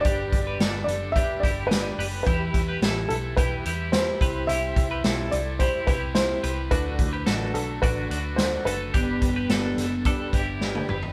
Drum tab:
HH |x-x-x-x-x-x-x-o-|x-x-x-x-x-x-x-x-|x-x-x-x-x-x-x-x-|x-x-x-x-x-x-x-x-|
SD |----o-------o---|----o-------o---|----o-------o---|----o-------o---|
T1 |----------------|----------------|----------------|----------------|
T2 |----------------|----------------|----------------|----------------|
FT |----------------|----------------|----------------|----------------|
BD |o-o-----o-o-----|o-o-----o-----o-|--o-----o-o-----|o-o-----o-------|

HH |x-x-x-x-x-x-----|
SD |----o-o-----o---|
T1 |-------------o--|
T2 |--------------o-|
FT |---------------o|
BD |o-o-----o-o-----|